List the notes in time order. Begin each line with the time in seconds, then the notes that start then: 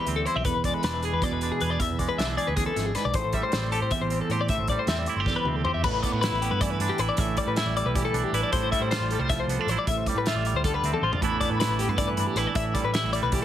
Already playing: E2 G3 G4 B4
0.07 D2 C4, closed hi-hat
0.16 A4
0.26 E4 C5, closed hi-hat
0.36 B1 G4 E5
0.44 E1 E2 B4, kick, closed hi-hat
0.54 E1
0.64 G#3 D5, kick, closed hi-hat
0.74 B4
0.83 E1 D4 B4, snare, closed hi-hat
1.03 G#4, closed hi-hat
1.13 E2 B4
1.22 B2 D5, kick, closed hi-hat
1.31 E1 B4
1.41 D4, closed hi-hat
1.52 G#4
1.61 E2 G#4 B4, closed hi-hat
1.70 D5
1.80 E2 E5, kick, closed hi-hat
1.90 E1
1.99 G#3 D5, kick, closed hi-hat
2.09 B4
2.18 B1 D4 E5, snare, closed hi-hat
2.37 G#4 D5, closed hi-hat
2.47 D2 B4
2.56 E2 G#4, kick, closed hi-hat
2.66 A4
2.76 G#1 F2, snare, closed hi-hat
2.86 G#4
2.95 G#2 B4, snare, closed hi-hat
3.05 B1 D5
3.14 A1 A2 C5, kick, closed hi-hat
3.24 A1
3.33 G3 E5, kick, closed hi-hat
3.43 C5
3.52 A1 C4 C5, snare, closed hi-hat
3.72 G4 A4, closed hi-hat
3.81 A2 C5
3.91 E2 E5, kick, closed hi-hat
4.01 A1 C5
4.10 C4, closed hi-hat
4.21 A4
4.29 A2 G4 C5, closed hi-hat
4.41 D5
4.48 A2 E5, kick, closed hi-hat
4.57 A1
4.68 G3 D5, kick, closed hi-hat
4.79 C5
4.87 E2 C4 E5, snare, closed hi-hat
5.06 E4 D5, closed hi-hat
5.16 G1 G4 C5
5.26 E2 A4, kick, snare
5.36 B4
5.44 D2 C4, mid tom
5.56 A4
5.64 G4 C5, floor tom
5.74 E2 E5
5.83 A1 A2 B4, kick, crash
6.03 B3 D5, kick, closed hi-hat
6.12 A2 B4
6.21 E4 B4, snare, closed hi-hat
6.31 A1
6.42 B3 G4, closed hi-hat
6.51 G2 B4
6.61 E3 D5, kick, closed hi-hat
6.70 B4
6.80 G2 D4, closed hi-hat
6.89 G4
6.98 A1 E4 B4, closed hi-hat
7.09 D5
7.17 A1 A2 E5, kick, closed hi-hat
7.37 G3 D5, kick, closed hi-hat
7.47 A2 B4
7.56 E4 E5, snare, closed hi-hat
7.66 A1
7.76 G3 D5, closed hi-hat
7.85 B1 B4
7.95 E3 G4, kick, closed hi-hat
8.05 A4
8.13 B1 D4, closed hi-hat
8.24 G4
8.32 A1 E4 B4, closed hi-hat
8.43 D5
8.52 A1 A2 C5, kick, closed hi-hat
8.72 G3 E5, kick, closed hi-hat
8.80 A2 C5
8.91 F4 C5, snare, closed hi-hat
9.00 A1
9.11 G3 A4, closed hi-hat
9.19 C2 C5
9.29 F3 E5, kick, snare, closed hi-hat
9.40 C5
9.47 C2 B3, closed hi-hat
9.59 D4 A4
9.67 A1 C5, closed hi-hat
9.72 E4
9.79 D5
9.87 A1 A2 E5, kick, closed hi-hat
10.06 G3 D5, kick, closed hi-hat
10.15 A2 B4
10.26 F4 E5, snare, closed hi-hat
10.35 A1
10.45 G3 D5, closed hi-hat
10.53 D2 C5
10.64 D3 A4, kick, closed hi-hat
10.74 B4
10.83 D2 C4, closed hi-hat
10.94 A4, high tom
11.02 A1 F4 C5
11.12 D5, floor tom
11.21 A1 A2 E3 B3 D4 E4 B4, kick, closed hi-hat
11.40 B3 D5, kick, closed hi-hat
11.50 A2 B4
11.60 E4 B4, snare, closed hi-hat
11.69 A1
11.79 B3 G4, closed hi-hat
11.88 G2 B4
11.98 E3 D5, kick, closed hi-hat
12.07 B4
12.16 G2 D4, closed hi-hat
12.27 G4
12.36 A1 E4 B4, snare, closed hi-hat
12.47 D5
12.54 A1 A2 E5, kick, closed hi-hat
12.74 G3 D5, kick, closed hi-hat
12.84 A2 B4
12.94 E4 E5, snare, closed hi-hat
13.03 A1
13.13 G3 D5, closed hi-hat
13.22 B1 B4
13.32 E3 G4, kick, closed hi-hat